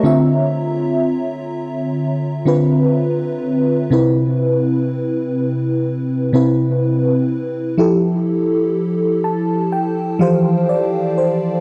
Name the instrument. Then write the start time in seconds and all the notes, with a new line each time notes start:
fm electric piano
Already playing: C#5 A#5
0.03 D3 C4 F4 E5
2.45 D3 C4 F4 B4
3.90 C3 C4 E4 B4
6.33 C3 C4 E4 B4
7.78 F3 E4 G4 A4
9.24 A5
9.72 G5
10.19 E3 F3 G4 C5 F5
10.69 D5
11.18 C5